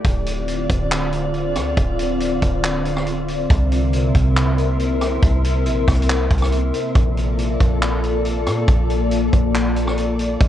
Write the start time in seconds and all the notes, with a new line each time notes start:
0.05 D1 D3 C4 F4 D5, kick, closed hi-hat
0.26 closed hi-hat
0.48 closed hi-hat
0.70 D1, kick, closed hi-hat
0.91 clap, closed hi-hat
1.13 closed hi-hat
1.34 closed hi-hat
1.56 D2, cross-stick, closed hi-hat
1.77 D1, kick, closed hi-hat
1.99 closed hi-hat
2.20 closed hi-hat
2.42 D1, kick, closed hi-hat
2.64 clap, closed hi-hat
2.85 closed hi-hat
2.96 cross-stick
3.07 closed hi-hat
3.28 closed hi-hat
3.50 C2 C3 A#3 E4 A#4 C5 E5, kick, closed hi-hat
3.72 closed hi-hat
3.93 closed hi-hat
4.15 C2, kick, closed hi-hat
4.36 clap, closed hi-hat
4.58 closed hi-hat
4.79 closed hi-hat
5.01 cross-stick, closed hi-hat
5.23 C2, kick, closed hi-hat
5.44 closed hi-hat
5.66 A#1, closed hi-hat
5.87 C2, kick, cross-stick, closed hi-hat, open hi-hat
5.95 closed hi-hat
6.02 closed hi-hat
6.09 clap, closed hi-hat
6.31 C2, kick, closed hi-hat
6.38 closed hi-hat
6.42 cross-stick, closed hi-hat
6.52 closed hi-hat
6.74 closed hi-hat
6.95 A#1 A#3 F4 A4 D5, kick, closed hi-hat
7.17 closed hi-hat
7.38 closed hi-hat
7.60 A#1, kick, closed hi-hat
7.82 clap, closed hi-hat
8.04 closed hi-hat
8.25 closed hi-hat
8.46 A#2, cross-stick, closed hi-hat
8.68 A#1, kick, closed hi-hat
8.90 closed hi-hat
9.11 closed hi-hat
9.33 A#1, kick, closed hi-hat
9.54 clap, closed hi-hat
9.76 closed hi-hat
9.88 cross-stick
9.98 closed hi-hat
10.19 closed hi-hat
10.40 A1 A3 G4, kick, closed hi-hat